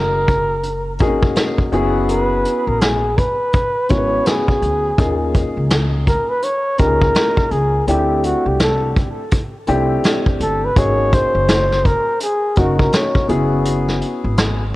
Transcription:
Already playing: upright bass F#1, upright piano A#3 C#4 D#4 F#4 G#4, flugelhorn A#4
0.28 kick, closed hi-hat
0.63 closed hi-hat
0.99 upright bass G#1, upright piano A#3 C4 D#4 F#4 G#4, kick, closed hi-hat
1.07 upright piano C#4
1.23 kick
1.36 snare, closed hi-hat
1.58 kick
1.72 upright bass F#1, upright piano B3 C#4 E4 F#4 G#4, closed hi-hat
2.08 flugelhorn B4, closed hi-hat
2.45 closed hi-hat
2.67 upright bass A#1, flugelhorn A#4
2.81 flugelhorn G#4, snare, closed hi-hat
3.18 flugelhorn B4, kick, closed hi-hat
3.53 kick, closed hi-hat
3.89 upright bass G#1, upright piano B3 C#4 E4 F#4 A#4, flugelhorn C#5, kick, closed hi-hat
3.97 upright piano B4
4.26 flugelhorn G#4, snare, closed hi-hat
4.48 kick
4.62 upright bass D2, closed hi-hat
4.98 upright bass D#2, upright piano A#3 C#4 D#4 F4 G#4, kick, closed hi-hat
5.34 kick, closed hi-hat
5.57 upright bass C#2
5.70 snare, closed hi-hat
6.07 flugelhorn A#4, kick, closed hi-hat
6.30 flugelhorn B4
6.42 flugelhorn C#5, closed hi-hat
6.78 upright bass C#2, upright piano A#3 C#4 D#4 F4 G4, flugelhorn A#4, kick, closed hi-hat
6.87 upright piano G#4
7.02 kick
7.15 snare, closed hi-hat
7.37 kick
7.51 upright bass C#2, flugelhorn G#4, closed hi-hat
7.87 upright bass D2, upright piano A3 C4 D4 E4 G4, flugelhorn G4, closed hi-hat
8.24 flugelhorn F#4, closed hi-hat
8.46 upright bass C2, flugelhorn G4
8.59 flugelhorn A4, snare, closed hi-hat
8.96 kick, closed hi-hat
9.31 kick, closed hi-hat
9.67 upright bass C2, upright piano A3 C4 D4 E4 G4, closed hi-hat
10.04 snare, closed hi-hat
10.26 kick
10.40 upright bass G1, flugelhorn A4, closed hi-hat
10.65 flugelhorn B4
10.76 upright bass G#1, upright piano A#3 C#4 D#4 F#4 G#4, flugelhorn C#5, kick, closed hi-hat
11.12 flugelhorn C5, kick, closed hi-hat
11.35 upright bass F#1
11.48 snare, closed hi-hat
11.72 snare
11.85 flugelhorn A#4, kick, closed hi-hat
12.20 flugelhorn G#4, closed hi-hat
12.56 upright bass F#1, upright piano A#3 C#4 D#4 F#4 A#4, flugelhorn F#4, kick, closed hi-hat
12.80 flugelhorn A#4, kick
12.93 flugelhorn C#5, snare, closed hi-hat
13.15 kick
13.28 upright bass F#1, upright piano B3 C#4 E4 F#4 G#4, closed hi-hat
13.65 closed hi-hat
13.88 snare
14.01 closed hi-hat
14.24 upright bass G#1
14.37 snare, closed hi-hat

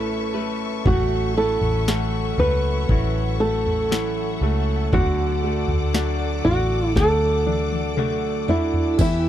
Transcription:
Already playing: fingered electric bass A1, grand piano A3, clean electric guitar A3 C#4 E4 B4, nylon-string guitar E4, string section B4 E5 A5 C#6
0.34 grand piano A3, clean electric guitar C#4 E4 B4
0.86 fingered electric bass A1, clean electric guitar A2 E3 F#3 A3 C#4 F#4, grand piano A3, nylon-string guitar F#4, string section A4 F#5, kick, floor tom
1.37 clean electric guitar F#3 A3 C#4 F#4, grand piano E4, nylon-string guitar A4
1.61 fingered electric bass A1, floor tom
1.88 clean electric guitar A2 E3 F#3 A3 C#4 F#4, grand piano A3, snare
2.38 fingered electric bass C#2, clean electric guitar F#3 A3 C#4 F#4, nylon-string guitar B4, floor tom
2.89 fingered electric bass A1, clean electric guitar F#3 A3 C#4 F#4, grand piano E4, kick, floor tom
3.40 grand piano A3, nylon-string guitar A4
3.66 floor tom
3.91 clean electric guitar A2 E3 F#3 A3 C#4 F#4, grand piano E4, snare
4.41 fingered electric bass C#2, clean electric guitar F#3 A3 C#4 F#4, grand piano A3
4.93 fingered electric bass D2, clean electric guitar D3 F#3 A3 D4 F#4, grand piano D3, nylon-string guitar F#4, string section D5 D6, kick, floor tom
5.43 grand piano A3, clean electric guitar A3 D4 F#4
5.68 fingered electric bass D2, floor tom
5.94 clean electric guitar D3 F#3 A3 D4 F#4, grand piano D4, snare
6.45 fingered electric bass A1, clean electric guitar A3 D4 F#4, nylon-string guitar F#4, floor tom
6.96 fingered electric bass D2, clean electric guitar F#3 A3 D4 F#4, grand piano A3, nylon-string guitar A4, kick, snare
7.47 grand piano D4, high tom
7.72 high tom
7.97 clean electric guitar D3 F#3 A3 D4 F#4, grand piano A3, mid tom
8.01 nylon-string guitar G4
8.48 clean electric guitar A3 D4 F#4, grand piano D4, nylon-string guitar E4, floor tom
8.74 floor tom
8.98 fingered electric bass E2, grand piano E3, clean electric guitar E3 B3 E4 G4, nylon-string guitar E4, string section B4 E5 G5 E6, kick, floor tom, crash, tambourine

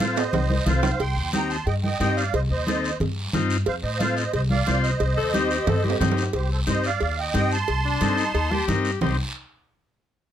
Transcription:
Already playing: upright bass A2
0.00 transistor combo organ C4 F4 A4, accordion C5 F5, cowbell, high conga, short guiro
0.16 accordion C5 D#5, high timbale, short guiro
0.33 upright bass C2, cowbell, low conga, low timbale, long guiro
0.50 high conga
0.66 upright bass C2, transistor combo organ C4 F4 A4, accordion C5 F5, cowbell, high conga, low conga, short guiro
0.83 low timbale, short guiro
0.99 upright bass C2, accordion G5 C6, cowbell, long guiro
1.16 upright bass D#2
1.33 transistor combo organ C4 D#4 G4, accordion G5 A#5, cowbell, high conga, short guiro
1.49 accordion A5 C6, short guiro
1.66 upright bass G2, accordion D#5 G5, cowbell, long guiro
1.83 accordion D#5 G5, high conga
2.00 upright bass G2, transistor combo organ C4 D#4 G4, accordion D#5 G5, cowbell, high conga, short guiro
2.16 accordion D5 F5, short guiro
2.33 upright bass C2, accordion C5 D#5, cowbell, long guiro
2.50 upright bass D#2, accordion C5 D#5
2.67 transistor combo organ C4 D#4 A4, cowbell, high conga, short guiro
2.84 short guiro
3.00 upright bass G2, cowbell, low conga, long guiro
3.33 upright bass G2, transistor combo organ C4 D#4 F4, cowbell, high conga, low conga, short guiro
3.50 short guiro
3.66 upright bass F2, accordion C5 F5, cowbell, long guiro
3.83 upright bass A2, accordion C5 D#5
3.99 transistor combo organ C4 F4 A4, accordion C5 F5, cowbell, high conga, short guiro
4.16 accordion C5 D#5, short guiro
4.33 upright bass C2, accordion C5 D#5, cowbell, long guiro
4.50 accordion D5 F5, high conga
4.67 upright bass C2, transistor combo organ C4 F4 C5, cowbell, high conga, short guiro
4.83 accordion C5 D#5, short guiro
5.00 upright bass C2, cowbell, long guiro
5.17 tenor saxophone A4
5.34 transistor combo organ C4 D#4 G4, tenor saxophone G4, cowbell, high conga, short guiro
5.51 tenor saxophone G4, short guiro
5.67 upright bass G2, tenor saxophone A4, cowbell, low conga, high timbale, long guiro
5.84 tenor saxophone G4, high conga
5.90 high timbale
6.00 upright bass G2, transistor combo organ C4 D#4 G4, cowbell, high conga, low conga, low timbale, short guiro
6.12 low timbale
6.17 short guiro
6.23 low timbale
6.33 upright bass C2, accordion G4 C5, cowbell, long guiro
6.52 accordion A4 C5
6.67 upright bass G2, transistor combo organ C4 D#4 G4, accordion C5 D#5, cowbell, high conga, short guiro
6.84 accordion D5 F5, short guiro
7.01 upright bass D#2, cowbell, long guiro
7.19 accordion D#5 G5
7.34 upright bass G2, transistor combo organ C4 D#4 G4, accordion D#5 G5, cowbell, high conga, short guiro
7.51 accordion A5 C6, short guiro
7.68 upright bass C2, cowbell, long guiro
7.85 tenor saxophone D4
8.01 upright bass G2, transistor combo organ C4 D#4 A4, cowbell, high conga, short guiro
8.17 tenor saxophone D#4, short guiro
8.34 upright bass D#2, tenor saxophone D#4, cowbell, long guiro
8.51 tenor saxophone G4, high conga
8.68 upright bass G2, transistor combo organ C4 D#4 A#4, cowbell, high conga, low conga, short guiro
8.85 short guiro
9.01 upright bass C2, transistor combo organ C4 D#4 G4, tenor saxophone G4, accordion C6, low conga, low timbale, long guiro

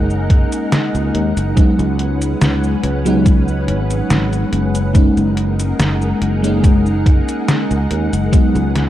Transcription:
Already playing: fretless electric bass F#1, fm electric piano G#3 A#3 C#4 D#4, string machine D#4 G#4 A#4 F#5
0.10 cabasa
0.30 kick, closed hi-hat
0.52 closed hi-hat, cabasa
0.72 snare, closed hi-hat, cabasa
0.95 fretless electric bass C#2, closed hi-hat, cabasa
1.14 fretless electric bass D#2, closed hi-hat
1.37 fretless electric bass F#1, closed hi-hat, cabasa
1.55 fm electric piano F#3 G#3 B3 D#4, string machine C#4 B4, kick, closed hi-hat, cabasa
1.79 fretless electric bass C#2, closed hi-hat, cabasa
1.99 closed hi-hat
2.22 closed hi-hat, cabasa
2.41 fretless electric bass C#2, snare, closed hi-hat, cabasa
2.64 cabasa
2.83 fretless electric bass C#2, closed hi-hat
3.05 fm electric piano F#3 G#3 B3 D#4, closed hi-hat, cabasa
3.26 kick, closed hi-hat, cabasa
3.48 cabasa
3.68 fretless electric bass G#1, closed hi-hat
3.91 closed hi-hat, cabasa
4.10 fretless electric bass G#1, snare, closed hi-hat, cabasa
4.33 closed hi-hat, cabasa
4.53 fretless electric bass F#1, closed hi-hat
4.75 closed hi-hat, cabasa
4.93 fm electric piano G#3 A#3 C#4 D#4, string machine D#4 G#4 A#4 F#5, kick, closed hi-hat, cabasa
5.17 fretless electric bass F#1, closed hi-hat, cabasa
5.37 closed hi-hat
5.60 closed hi-hat, cabasa
5.79 fretless electric bass F#1, snare, closed hi-hat, cabasa
6.02 cabasa
6.21 fretless electric bass F#1, closed hi-hat
6.42 fm electric piano G#3 A#3 C#4 D#4, closed hi-hat, cabasa
6.64 kick, closed hi-hat, cabasa
6.86 cabasa
7.06 kick, closed hi-hat
7.29 closed hi-hat, cabasa
7.48 snare, closed hi-hat, cabasa
7.71 fretless electric bass C#2, closed hi-hat, cabasa
7.91 fretless electric bass D#2, closed hi-hat
8.13 fretless electric bass F#1, closed hi-hat, cabasa
8.31 fm electric piano F#3 G#3 B3 D#4, string machine C#4 G#4 B4, kick, closed hi-hat, cabasa
8.55 fretless electric bass C#2, closed hi-hat, cabasa
8.76 snare, closed hi-hat

